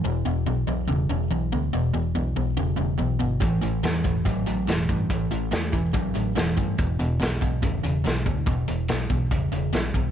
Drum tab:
HH |--------|--------|xxxxxxxx|xxxxxxxx|
SD |--------|--------|--o---o-|--o---o-|
BD |--------|--------|o--oo--o|o--oo--o|

HH |xxxxxxxx|xxxxxxxx|
SD |--o---o-|--o---o-|
BD |o--oo--o|o--oo--o|